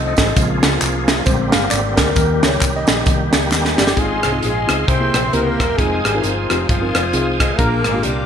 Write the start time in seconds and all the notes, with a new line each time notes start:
Already playing: C2 F3 C4 D#4 A4
0.07 D#5
0.17 A1, kick, snare, closed hi-hat, tambourine
0.36 A#1 C#3 G#3 A#3 C4 F4 G#4, kick, closed hi-hat, tambourine
0.63 C#2, snare, closed hi-hat, tambourine
0.82 C2, clap, closed hi-hat, tambourine
1.08 snare, closed hi-hat, tambourine
1.25 A#1 D3 G3 G#3 A#3 C4 G4 C5, kick, closed hi-hat, tambourine
1.52 G1 F5, snare, closed hi-hat, tambourine
1.71 G#1 D5, clap, closed hi-hat, tambourine
1.97 D2 A#4, kick, snare, closed hi-hat, tambourine
2.15 D#2 D#3 G3 A#3 G4 A#4, kick, closed hi-hat, tambourine
2.43 C#2 C#5, snare, closed hi-hat, tambourine
2.61 C2, kick, clap, closed hi-hat, tambourine
2.76 D#5
2.87 A#1, snare, closed hi-hat, tambourine
3.06 C2 D#3 G3 A#3, kick, closed hi-hat, tambourine
3.33 C#2, snare, closed hi-hat, tambourine
3.52 D#2, snare, clap, tambourine
3.65 snare
3.78 G1 G3 G4, snare, tambourine
3.87 snare
3.96 G#1 G#2 G#3 C4 D#4 F4 G#4 D#5 F5 C6, kick, closed hi-hat
4.23 C2 G#3, cross-stick, closed hi-hat
4.32 C4 D#4 F4 G#4
4.43 A#1 G#3 C4 F4 G#4, closed hi-hat
4.67 C#2 C4 D#4 F4 G#4, cross-stick, closed hi-hat
4.87 C2 C3 C4 E4 G4 A#4 C5 E5 G5, kick, closed hi-hat
5.00 A#3 C4 E4 G#4
5.14 A#1, cross-stick, closed hi-hat
5.33 C#2 A#3 C4 E4 G4 A#4, closed hi-hat
5.60 E1, kick, cross-stick, closed hi-hat
5.78 F1 G#3 C4 D#4 F4 G#4 C5 F5 G#5 D#6, kick, closed hi-hat
6.05 G#1 G3, cross-stick, closed hi-hat
6.14 E3 C4 D#4 F4 A#4
6.22 G1 F3 G#3 C4 F4, closed hi-hat
6.50 F1 C4 D#4 F4 G4, cross-stick, closed hi-hat
6.67 G1 F3 G#3 C4 F4, kick, closed hi-hat
6.81 C4 D#4 F4 A#4
6.95 F1, cross-stick, closed hi-hat
7.13 C2 C4 D#4 F4 G#4, closed hi-hat
7.39 G#3 G#4, kick, cross-stick, closed hi-hat
7.53 A3
7.57 A#1 A#2 A#3 D4 F4 G#4 A#4 D6, kick, closed hi-hat
7.83 G#1 G#3 G#4, cross-stick, closed hi-hat
7.94 A#3 D4 F4 G4
8.02 C2 G3 D4 G4, closed hi-hat